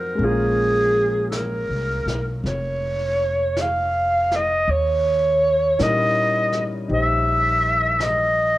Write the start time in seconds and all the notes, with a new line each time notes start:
Already playing: F2 F#3 C4 D#4 F4 F#4 A#4
0.15 G#3 A#3
0.19 A#1 C#4, brush sweep
0.24 F4 G#4 A#4
1.30 A4, brush sweep, snare, hi-hat pedal
1.36 A#4
1.69 C2
2.06 B1, snare
2.44 F1 C#5, brush sweep, snare
3.57 brush sweep, snare, hi-hat pedal
3.61 F5
4.31 snare
4.35 D#5
4.68 D#2 C#5, brush sweep
5.79 A#2 G3 C#4 D#4 E4 A#4, brush sweep, snare, hi-hat pedal
5.83 D#5
6.52 snare
6.88 A#1 D#4 G4 C5, brush sweep
6.94 E5
8.00 D#5, brush sweep, snare, hi-hat pedal